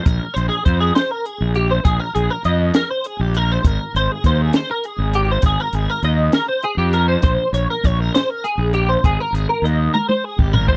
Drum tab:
HH |x-x-x-x-x-x-|x-x-x-x-x-x-|x-x-x-x-x-x-|x-x-x-x-x-x-|
SD |------o-----|------o-----|------o-----|------o-----|
T1 |------------|------------|------------|------------|
FT |------------|------------|------------|------------|
BD |o---o-------|o-----------|o---o-------|o-----------|

HH |x-x-x-x-x-x-|x-x-x-------|
SD |------o-----|------------|
T1 |------------|------oo----|
FT |------------|----------o-|
BD |o---o-------|o--------o-o|